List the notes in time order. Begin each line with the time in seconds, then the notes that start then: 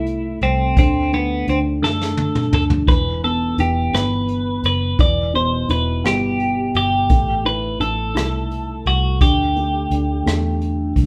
Already playing: C2 A3 E4
0.06 closed hi-hat
0.41 C2 C4, closed hi-hat
0.77 D2 D3 C4, kick, closed hi-hat
1.12 A3 B3, closed hi-hat
1.47 D2 D3 C4, closed hi-hat
1.82 F#2 A3 A4, snare
2.01 snare
2.17 high tom
2.35 mid tom
2.52 D2 A4, mid tom
2.70 floor tom
2.87 E1 E3 B4, kick, closed hi-hat
3.24 B3 A4, closed hi-hat
3.58 E1 E3 G4, closed hi-hat
3.93 G1 B3 B4, cross-stick, closed hi-hat
4.28 closed hi-hat
4.63 F#1 B4, closed hi-hat
4.99 E1 E3 D5, kick, closed hi-hat
5.34 B2 C5, closed hi-hat
5.69 E1 E4 B4, closed hi-hat
6.04 G1 B3 G4, cross-stick, closed hi-hat
6.40 closed hi-hat
6.75 G1 G4, closed hi-hat
7.09 A1 A3, kick, closed hi-hat
7.45 E4 B4, closed hi-hat
7.80 A1 A3 A4, closed hi-hat
8.14 C2 E4, cross-stick, closed hi-hat
8.51 closed hi-hat
8.86 C2 F#4, closed hi-hat
9.21 D2 D3 G4, kick, closed hi-hat
9.56 A3, closed hi-hat
9.90 D2 D3, closed hi-hat
10.26 E2 A3, cross-stick, closed hi-hat
10.61 closed hi-hat
10.96 C2, kick, closed hi-hat